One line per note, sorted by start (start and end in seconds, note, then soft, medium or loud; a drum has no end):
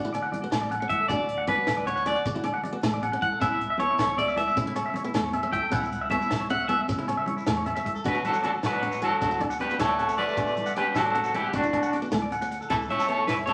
0.00 0.41 D3 medium
0.00 0.10 F#4 medium
0.05 0.12 E4 medium
0.13 0.30 D4 medium
0.13 0.20 D5 medium
0.13 closed hi-hat soft
0.13 low agogo medium
0.22 0.29 F#5 medium
0.32 0.39 D5 medium
0.32 closed hi-hat soft
0.32 high conga medium
0.32 low conga medium
0.42 0.51 B3 medium
0.42 0.49 F#4 medium
0.42 low conga soft
0.51 0.83 A1 medium
0.51 0.68 A3 medium
0.51 0.58 A4 medium
0.51 snare medium
0.51 closed hi-hat medium
0.51 low agogo medium
0.51 shekere medium
0.61 0.68 D5 medium
0.61 low conga medium
0.70 0.78 F#5 medium
0.70 closed hi-hat medium
0.70 high conga medium
0.70 low agogo medium
0.80 0.97 C#4 medium
0.80 0.87 F#5 medium
0.89 0.98 D2 medium
0.89 1.08 E5 medium
0.89 0.97 F#5 medium
0.89 kick medium
0.89 closed hi-hat medium
0.89 low conga medium
1.00 1.07 A4 medium
1.08 1.56 D2 medium
1.08 1.26 D4 medium
1.08 1.17 F#4 medium
1.08 1.45 D5 medium
1.08 kick medium
1.08 closed hi-hat medium
1.08 high conga medium
1.08 low agogo medium
1.08 shekere medium
1.19 1.26 F#4 medium
1.19 low conga medium
1.29 closed hi-hat medium
1.29 low conga soft
1.38 1.45 F#5 medium
1.47 1.64 C#4 medium
1.47 1.84 B4 medium
1.47 1.55 D5 medium
1.47 kick medium
1.47 closed hi-hat medium
1.47 high conga medium
1.47 low conga medium
1.47 low agogo medium
1.58 1.64 F#4 medium
1.67 2.14 D2 medium
1.67 1.74 A4 medium
1.67 snare medium
1.67 closed hi-hat medium
1.67 low agogo medium
1.67 shekere medium
1.76 1.84 D5 medium
1.76 low conga medium
1.86 2.03 D4 medium
1.86 2.06 C#5 medium
1.86 1.93 F#5 medium
1.86 closed hi-hat soft
1.86 high conga medium
1.96 2.03 F#5 medium
1.96 low conga soft
1.96 shekere soft
2.06 2.22 C#4 medium
2.06 2.13 D5 medium
2.06 2.25 D5 medium
2.06 snare soft
2.06 closed hi-hat soft
2.06 low conga medium
2.06 low agogo medium
2.06 shekere soft
2.15 2.22 F#5 medium
2.15 shekere soft
2.25 2.72 D3 medium
2.25 2.34 D4 medium
2.25 muted clean electric guitar stroke medium
2.25 kick medium
2.25 closed hi-hat medium
2.25 high conga medium
2.25 shekere medium
2.35 2.43 E4 medium
2.35 2.42 F#4 medium
2.35 low conga medium
2.44 2.60 D4 medium
2.44 2.51 D5 medium
2.44 closed hi-hat soft
2.44 low agogo medium
2.54 2.61 F#5 medium
2.63 2.70 D5 medium
2.63 closed hi-hat soft
2.63 high conga medium
2.63 low conga medium
2.73 2.81 B3 medium
2.73 2.80 F#4 medium
2.73 low conga soft
2.83 3.14 A1 medium
2.83 2.99 A3 medium
2.83 2.90 A4 medium
2.83 snare medium
2.83 closed hi-hat medium
2.83 low agogo medium
2.83 shekere medium
2.93 3.00 D5 medium
2.93 low conga medium
3.02 3.10 F#5 medium
3.02 closed hi-hat soft
3.02 high conga medium
3.02 low agogo medium
3.12 3.29 C#4 medium
3.12 3.19 F#5 medium
3.21 3.30 C2 medium
3.21 3.29 F#5 medium
3.21 3.41 F#5 medium
3.21 kick medium
3.21 closed hi-hat soft
3.21 low conga medium
3.32 3.38 A4 medium
3.40 3.88 C#2 medium
3.40 3.57 C#4 medium
3.40 3.48 E4 medium
3.40 3.77 E5 medium
3.40 kick medium
3.40 closed hi-hat medium
3.40 high conga medium
3.40 low agogo medium
3.40 shekere medium
3.50 3.58 E4 medium
3.50 low conga medium
3.59 closed hi-hat soft
3.59 low conga soft
3.70 3.77 E5 medium
3.78 3.96 B3 medium
3.78 4.15 C#5 medium
3.78 3.87 C#5 medium
3.78 closed hi-hat soft
3.78 high conga medium
3.78 low conga medium
3.78 low agogo medium
3.90 3.97 E4 medium
3.98 4.46 C#2 medium
3.98 4.06 A4 medium
3.98 snare medium
3.98 closed hi-hat medium
3.98 low agogo medium
3.98 shekere loud
4.07 4.16 C#5 medium
4.07 low conga medium
4.17 4.34 C#4 medium
4.17 4.37 D5 medium
4.17 4.25 E5 medium
4.17 closed hi-hat soft
4.17 high conga medium
4.26 4.35 E5 medium
4.26 low conga soft
4.26 shekere soft
4.36 4.53 B3 medium
4.36 4.44 E5 medium
4.36 4.56 E5 medium
4.36 snare soft
4.36 closed hi-hat medium
4.36 low conga medium
4.36 low agogo medium
4.48 4.54 E5 medium
4.48 shekere soft
4.56 5.04 C#3 medium
4.56 4.65 C#4 medium
4.56 4.64 E4 medium
4.56 kick medium
4.56 closed hi-hat medium
4.56 high conga medium
4.56 shekere loud
4.65 4.75 D4 medium
4.65 4.73 E4 medium
4.65 low conga medium
4.76 4.83 C#5 medium
4.76 muted steel-string acoustic guitar stroke medium
4.76 closed hi-hat medium
4.76 low agogo medium
4.86 4.92 E5 loud
4.94 5.02 C#5 medium
4.94 closed hi-hat soft
4.94 high conga loud
4.94 low conga medium
5.04 5.13 B3 medium
5.04 5.12 E4 medium
5.04 low conga soft
5.14 5.46 E2 loud
5.14 5.30 A3 medium
5.14 5.21 A4 medium
5.14 snare medium
5.14 closed hi-hat medium
5.14 low agogo medium
5.14 shekere loud
5.23 5.31 C#5 medium
5.23 low conga medium
5.32 5.41 E5 medium
5.32 closed hi-hat medium
5.32 high conga medium
5.32 low agogo medium
5.43 5.59 C#4 medium
5.43 5.50 E5 medium
5.52 5.61 C#2 medium
5.52 5.60 E5 medium
5.52 5.71 G5 loud
5.52 kick medium
5.52 closed hi-hat soft
5.52 low conga loud
5.62 5.69 A4 medium
5.70 6.20 C#2 medium
5.70 5.88 C#4 medium
5.70 5.79 E4 medium
5.70 6.10 F#5 medium
5.70 kick medium
5.70 closed hi-hat medium
5.70 high conga loud
5.70 low agogo medium
5.70 shekere loud
5.82 5.89 E4 medium
5.82 low conga medium
5.82 shekere soft
5.92 closed hi-hat soft
5.92 shekere soft
6.01 6.08 E5 medium
6.10 6.27 B3 medium
6.10 6.18 C#5 medium
6.10 6.47 E5 medium
6.10 kick medium
6.10 closed hi-hat soft
6.10 high conga loud
6.10 low conga loud
6.10 low agogo medium
6.20 6.27 E4 medium
6.20 shekere soft
6.30 6.77 C#2 medium
6.30 6.37 A4 medium
6.30 snare medium
6.30 closed hi-hat medium
6.30 low conga soft
6.30 low agogo medium
6.30 shekere loud
6.40 6.47 C#5 medium
6.40 low conga medium
6.49 6.66 C#4 medium
6.49 6.57 E5 medium
6.49 6.68 F#5 loud
6.49 closed hi-hat soft
6.49 high conga loud
6.49 low conga soft
6.60 6.67 E5 medium
6.68 6.85 B3 medium
6.68 6.80 E5 loud
6.68 6.77 E5 medium
6.68 closed hi-hat soft
6.68 low conga medium
6.68 low agogo medium
6.79 6.86 E5 medium
6.79 low conga soft
6.88 7.36 C#3 medium
6.88 6.97 C#4 medium
6.88 muted clean electric guitar stroke medium
6.88 kick medium
6.88 closed hi-hat medium
6.88 high conga loud
6.88 shekere loud
6.97 7.06 D4 medium
6.97 7.05 E4 medium
6.97 low conga medium
7.08 7.24 C#4 medium
7.08 7.15 C#5 medium
7.08 closed hi-hat soft
7.08 low agogo medium
7.17 7.24 E5 loud
7.26 7.34 C#5 medium
7.26 closed hi-hat soft
7.26 high conga loud
7.26 low conga medium
7.37 7.43 E4 medium
7.37 low conga soft
7.37 shekere soft
7.46 7.78 E2 medium
7.46 7.63 A3 medium
7.46 7.53 A4 medium
7.46 snare medium
7.46 closed hi-hat medium
7.46 low conga soft
7.46 low agogo medium
7.46 shekere loud
7.57 7.63 C#5 medium
7.57 low conga medium
7.66 7.73 E5 medium
7.66 closed hi-hat medium
7.66 high conga medium
7.66 low agogo medium
7.75 7.92 C#4 medium
7.75 7.82 E5 medium
7.75 shekere soft
7.85 7.94 C#2 medium
7.85 7.92 E5 medium
7.85 kick medium
7.85 closed hi-hat medium
7.85 low conga medium
7.95 8.02 A4 medium
7.95 shekere soft
8.04 8.21 D2 medium
8.04 8.21 D4 medium
8.04 8.11 F#4 medium
8.04 8.23 F#4 medium
8.04 8.26 B4 medium
8.04 kick medium
8.04 closed hi-hat medium
8.04 high conga medium
8.04 low agogo medium
8.04 shekere medium
8.09 8.25 F#3 medium
8.14 8.21 F#4 medium
8.14 shekere soft
8.24 8.44 F#3 medium
8.24 8.43 F#4 medium
8.24 8.43 A4 medium
8.24 closed hi-hat soft
8.24 low conga medium
8.24 shekere soft
8.33 8.40 F#5 medium
8.33 shekere medium
8.43 8.60 C#4 medium
8.43 8.50 F#4 medium
8.43 8.51 A4 medium
8.43 8.50 D5 medium
8.43 closed hi-hat medium
8.43 high conga loud
8.43 low agogo medium
8.47 8.55 F#3 medium
8.54 8.60 F#4 medium
8.54 low conga soft
8.63 9.10 A1 medium
8.63 9.01 F#3 medium
8.63 9.01 F#4 medium
8.63 8.70 A4 medium
8.63 9.01 B4 medium
8.63 snare medium
8.63 closed hi-hat medium
8.63 low conga medium
8.63 low agogo medium
8.63 shekere medium
8.72 8.79 D5 medium
8.82 8.98 D4 medium
8.82 8.89 F#5 medium
8.82 closed hi-hat soft
8.91 8.98 F#5 medium
8.91 shekere medium
9.01 9.39 F#3 medium
9.01 9.39 F#4 medium
9.01 9.39 A4 medium
9.01 9.08 F#5 medium
9.01 muted steel-string acoustic guitar stroke medium
9.01 closed hi-hat soft
9.01 low conga medium
9.01 low agogo medium
9.10 9.18 F#5 medium
9.21 9.68 D2 medium
9.21 9.29 D4 medium
9.21 9.28 F#4 medium
9.21 kick medium
9.21 closed hi-hat medium
9.21 high conga medium
9.21 shekere medium
9.30 9.39 E4 medium
9.30 9.37 F#4 medium
9.30 shekere soft
9.40 9.57 D4 medium
9.40 9.47 D5 medium
9.40 kick medium
9.40 closed hi-hat soft
9.40 low conga medium
9.40 low agogo medium
9.50 9.57 F#5 medium
9.50 shekere medium
9.60 9.79 G3 medium
9.60 9.79 G4 medium
9.60 9.78 B4 medium
9.60 9.67 D5 medium
9.60 snare soft
9.60 closed hi-hat soft
9.60 high conga medium
9.70 9.78 B3 medium
9.70 9.77 F#4 medium
9.70 shekere soft
9.79 10.26 D2 loud
9.79 10.16 A3 medium
9.79 9.86 A4 medium
9.79 10.16 A4 medium
9.79 10.16 C#5 medium
9.79 muted steel-string acoustic guitar stroke medium
9.79 snare medium
9.79 closed hi-hat medium
9.79 low conga medium
9.79 low agogo medium
9.79 shekere medium
9.89 9.95 D5 medium
9.89 low conga soft
9.98 10.05 F#5 medium
9.98 closed hi-hat soft
9.98 high conga medium
9.98 low conga soft
9.98 low agogo medium
9.98 shekere soft
10.08 10.24 C#4 medium
10.08 10.15 F#5 medium
10.08 shekere medium
10.17 10.73 A3 medium
10.17 10.73 B4 medium
10.17 10.72 D5 loud
10.17 10.24 F#5 medium
10.17 closed hi-hat soft
10.17 low conga medium
10.17 shekere soft
10.27 10.34 A4 medium
10.27 shekere soft
10.37 10.53 D2 medium
10.37 10.54 D4 medium
10.37 10.44 F#4 medium
10.37 kick medium
10.37 closed hi-hat medium
10.37 high conga medium
10.37 low agogo medium
10.37 shekere medium
10.46 10.54 F#4 medium
10.46 shekere soft
10.57 closed hi-hat soft
10.57 low conga medium
10.57 shekere soft
10.66 10.73 F#5 medium
10.66 shekere medium
10.76 10.94 G3 medium
10.76 10.92 C#4 medium
10.76 10.95 G4 medium
10.76 10.96 B4 medium
10.76 10.83 D5 medium
10.76 closed hi-hat soft
10.76 high conga medium
10.76 low agogo medium
10.86 10.93 F#4 medium
10.94 11.43 A1 medium
10.94 11.32 F#3 medium
10.94 11.33 F#4 medium
10.94 11.02 A4 medium
10.94 11.35 A4 medium
10.94 snare medium
10.94 closed hi-hat medium
10.94 low conga medium
10.94 low agogo medium
10.94 shekere medium
11.05 11.12 D5 medium
11.14 11.31 D4 medium
11.14 11.21 F#5 medium
11.14 closed hi-hat soft
11.14 high conga medium
11.24 11.31 F#5 medium
11.24 shekere medium
11.33 11.46 E3 medium
11.33 11.50 C#4 medium
11.33 11.47 E4 medium
11.33 11.48 G4 medium
11.33 11.41 F#5 medium
11.33 closed hi-hat medium
11.33 low conga medium
11.33 low agogo medium
11.44 11.57 E3 soft
11.44 11.51 F#5 medium
11.49 11.55 G4 medium
11.53 12.01 D2 medium
11.53 11.98 D3 medium
11.53 11.62 D4 medium
11.53 11.96 D4 medium
11.53 11.61 F#4 medium
11.53 11.98 F#4 medium
11.53 kick medium
11.53 closed hi-hat medium
11.53 high conga medium
11.53 shekere medium
11.63 11.71 E4 medium
11.63 shekere soft
11.73 11.89 D4 medium
11.73 muted clean electric guitar stroke medium
11.73 kick medium
11.73 closed hi-hat soft
11.73 low conga medium
11.73 low agogo medium
11.83 11.90 F#5 medium
11.83 shekere medium
11.93 11.99 D5 medium
11.93 snare soft
11.93 closed hi-hat soft
11.93 high conga medium
12.02 12.10 B3 medium
12.02 12.09 F#4 medium
12.02 shekere soft
12.12 12.59 D2 medium
12.12 12.28 A3 medium
12.12 12.19 A4 medium
12.12 snare medium
12.12 closed hi-hat medium
12.12 low conga medium
12.12 low agogo medium
12.12 shekere medium
12.22 12.29 D5 medium
12.22 low conga soft
12.31 12.39 F#5 medium
12.31 closed hi-hat soft
12.31 high conga medium
12.31 low conga soft
12.31 low agogo medium
12.31 shekere soft
12.41 12.58 C#4 medium
12.41 12.48 F#5 medium
12.41 shekere medium
12.51 12.58 F#5 medium
12.51 closed hi-hat soft
12.51 shekere soft
12.61 12.68 A4 medium
12.61 shekere soft
12.70 12.86 C#2 medium
12.70 12.80 E3 medium
12.70 12.86 C#4 medium
12.70 12.76 E4 medium
12.70 12.75 A4 medium
12.70 12.77 A4 medium
12.70 kick medium
12.70 closed hi-hat medium
12.70 high conga medium
12.70 low agogo medium
12.70 shekere medium
12.81 12.87 A4 medium
12.81 shekere soft
12.88 13.07 C#4 medium
12.88 13.07 C#5 medium
12.88 13.08 E5 loud
12.88 closed hi-hat soft
12.88 low conga medium
13.00 13.07 A5 medium
13.00 shekere medium
13.07 13.26 A3 medium
13.07 13.25 B3 medium
13.07 13.27 A4 medium
13.07 13.27 C#5 medium
13.07 13.16 E5 medium
13.07 closed hi-hat soft
13.07 high conga medium
13.07 low agogo medium
13.18 13.26 A4 medium
13.18 low conga soft
13.27 13.53 E2 medium
13.27 13.36 E3 medium
13.27 13.34 E4 medium
13.27 13.33 B4 loud
13.27 13.36 C#5 medium
13.27 snare medium
13.27 closed hi-hat medium
13.27 low conga medium
13.27 low agogo medium
13.27 shekere medium
13.39 13.45 E5 medium
13.46 13.53 A3 medium
13.46 13.53 C#4 medium
13.46 13.53 A4 medium
13.46 13.53 C#5 medium
13.46 13.53 A5 medium
13.46 closed hi-hat soft
13.46 high conga medium